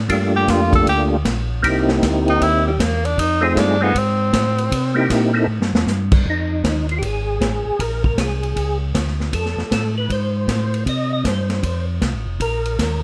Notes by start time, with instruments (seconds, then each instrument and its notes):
0.08 tonewheel organ G2 A3 A#3 D4 F4 G4, kick, ride
0.36 tenor saxophone G4
0.48 tonewheel organ F2, tenor saxophone F4, kick, snare, hi-hat pedal, ride
0.73 tenor saxophone A4, kick, ride
0.86 tonewheel organ D2, tenor saxophone G4, kick, ride
1.25 tonewheel organ A#1, kick, snare, hi-hat pedal, ride
1.63 tonewheel organ C2 A#3 C4 D#4 E4 G4, kick, ride
1.88 snare
2.02 tonewheel organ D2, kick, snare, hi-hat pedal, ride
2.28 tenor saxophone D#4, ride
2.41 tonewheel organ D#2, tenor saxophone E4, kick, ride
2.67 tenor saxophone G3
2.79 tonewheel organ E2, tenor saxophone A#3, kick, snare, hi-hat pedal, ride
3.05 tenor saxophone D4, ride
3.17 tonewheel organ F2, tenor saxophone D#4, kick, ride
3.41 tonewheel organ A3 C4 D#4 F4 G#4, tenor saxophone C4
3.56 tonewheel organ G2, tenor saxophone D4, kick, snare, hi-hat pedal, ride
3.81 tonewheel organ A3 C4 D#4 F4 G#4, tenor saxophone B3
3.95 tonewheel organ G#2, tenor saxophone C4, kick, ride
4.33 tonewheel organ A2, kick, snare, hi-hat pedal, ride
4.58 ride
4.71 tonewheel organ C3, kick, ride
4.94 tonewheel organ A#3 C4 D#4 E4 G4
5.10 tonewheel organ A#2, kick, snare, hi-hat pedal, ride
5.33 tonewheel organ A#3 C4 D#4 E4 A4
5.47 tonewheel organ A2
5.61 tonewheel organ G2, snare
5.73 tonewheel organ E2, snare
5.86 tonewheel organ G2, snare, hi-hat pedal
6.12 kick, crash
6.25 tonewheel organ F2, kick
6.30 tonewheel organ D#4
6.64 tonewheel organ D#2, kick, snare, hi-hat pedal, ride
6.89 tonewheel organ F4, ride
6.99 tonewheel organ G#1 G4, kick, ride
7.06 tonewheel organ G#4
7.40 tonewheel organ A1, kick, snare, hi-hat pedal, ride
7.65 tonewheel organ A1
7.79 tonewheel organ A#1 A#4, kick, ride
8.04 tonewheel organ A#4, kick
8.17 tonewheel organ C2 G#4, kick, snare, hi-hat pedal, ride
8.43 ride
8.56 tonewheel organ C#2, kick, ride
8.94 tonewheel organ D2, kick, snare, hi-hat pedal, ride
9.07 snare
9.20 snare
9.33 tonewheel organ F2 A4, kick, ride
9.46 snare
9.57 tonewheel organ F2, snare
9.71 tonewheel organ A2 A4, kick, snare, hi-hat pedal, ride
9.98 tonewheel organ B4
10.09 tonewheel organ G#2 C5, kick, ride
10.48 tonewheel organ A2, kick, snare, hi-hat pedal, ride
10.74 ride
10.86 tonewheel organ C3 D#5, kick, ride
11.13 tonewheel organ D#5
11.24 tonewheel organ G2 C5, kick, snare, hi-hat pedal, ride
11.49 snare, ride
11.63 tonewheel organ F2, kick, ride
12.01 tonewheel organ C2, kick, snare, hi-hat pedal, ride
12.13 tonewheel organ A1
12.26 tonewheel organ F1
12.40 tonewheel organ A#1 A#4, kick, ride
12.65 ride
12.79 tonewheel organ D#2, kick, snare, hi-hat pedal, ride